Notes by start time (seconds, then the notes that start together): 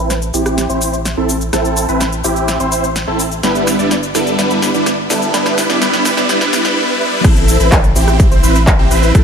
0.00 A1 C4 E4 B4
0.10 snare, closed hi-hat, cabasa
0.22 closed hi-hat, cabasa
0.34 A1 C4 E4 G4, open hi-hat, cabasa
0.46 cross-stick, closed hi-hat, cabasa
0.58 snare, closed hi-hat, cabasa
0.70 A1 C4 E4 C5, closed hi-hat, cabasa
0.82 open hi-hat, cabasa
0.94 closed hi-hat, cabasa
1.05 snare, closed hi-hat, cabasa
1.17 A1 C4 E4 A4
1.29 open hi-hat, cabasa
1.41 closed hi-hat, cabasa
1.53 A1 C4 E4 A4, cross-stick, snare, closed hi-hat, cabasa
1.65 closed hi-hat, cabasa
1.77 open hi-hat, cabasa
1.89 A1 C4 E4 B4, closed hi-hat, cabasa
2.01 snare, closed hi-hat, cabasa
2.13 closed hi-hat, cabasa
2.24 A1 C4 E4 G4, open hi-hat, cabasa
2.36 closed hi-hat, cabasa
2.48 snare, closed hi-hat, cabasa
2.60 A1 C4 E4 C5, closed hi-hat, cabasa
2.72 open hi-hat, cabasa
2.84 closed hi-hat, cabasa
2.96 snare, closed hi-hat, cabasa
3.08 A1 C4 E4 A4
3.20 open hi-hat, cabasa
3.32 closed hi-hat, cabasa
3.43 G1 G3 B3 D4 E4 B4, snare, closed hi-hat, cabasa
3.55 closed hi-hat, cabasa
3.67 snare, open hi-hat, cabasa
3.79 G1 G3 B3 D4 E4 D5, closed hi-hat, cabasa
3.91 snare, closed hi-hat, cabasa
4.03 closed hi-hat, cabasa
4.15 G1 G3 B3 D4 E4 A4, snare, open hi-hat, cabasa
4.27 closed hi-hat, cabasa
4.39 G1 G3 B3 D4 E4 B4, snare, closed hi-hat, cabasa
4.51 closed hi-hat, cabasa
4.62 snare, open hi-hat, cabasa
4.74 G1 G3 B3 D4 E4 D5, closed hi-hat, cabasa
4.86 snare, closed hi-hat, cabasa
5.10 G1 G3 B3 D4 E4 A4, snare, open hi-hat, cabasa
5.22 closed hi-hat, cabasa
5.34 G1 G3 B3 D4 E4 B4, snare, closed hi-hat, cabasa
5.46 snare, closed hi-hat, cabasa
5.58 snare, open hi-hat, cabasa
5.70 G1 G3 B3 D4 E4 D5, snare, closed hi-hat, cabasa
5.81 G1 G3 B3 D4 E4 B4, snare, closed hi-hat, cabasa
5.94 snare, closed hi-hat, cabasa
6.05 snare, open hi-hat, cabasa
6.17 G1 G3 B3 D4 E4 D5, snare, closed hi-hat, cabasa
6.29 G1 G3 B3 D4 E4 B4, snare, closed hi-hat, cabasa
6.41 snare, closed hi-hat, cabasa
6.53 G1 G3 B3 D4 E4 B4, snare, open hi-hat, cabasa
6.65 snare, closed hi-hat, cabasa
6.77 G3 B3 D4 E4 B4
7.01 G3 B3 D4 E4 B4
7.24 A1 C4 E4 A4, kick, cross-stick, closed hi-hat, crash, cabasa
7.36 closed hi-hat, cabasa
7.48 open hi-hat, cabasa
7.60 A1 C4 E4 B4, closed hi-hat, cabasa
7.72 kick, clap, closed hi-hat, cabasa
7.84 closed hi-hat
7.96 A1 C4 E4 G4, open hi-hat, cabasa
8.08 cross-stick, closed hi-hat, cabasa
8.20 kick, closed hi-hat, cabasa
8.32 A1 C4 E4 C5, closed hi-hat, cabasa
8.43 A1 C4 E4 B4, open hi-hat, cabasa
8.55 closed hi-hat, cabasa
8.67 kick, clap, closed hi-hat, cabasa
8.79 A1 C4 E4 G4
8.91 A1 C4 E4 B4, open hi-hat, cabasa
9.03 closed hi-hat, cabasa
9.15 A1 C4 E4 A4, kick, cross-stick, closed hi-hat, cabasa